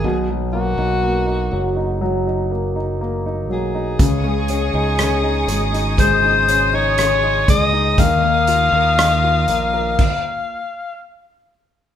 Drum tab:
CC |----------------|----------------|--------x-------|
HH |----------------|x-x-x-xxx-x-x-x-|x-x-x-x---------|
SD |----------------|----r-------r---|----r-----------|
BD |----------------|o-------o-----o-|o-------o-------|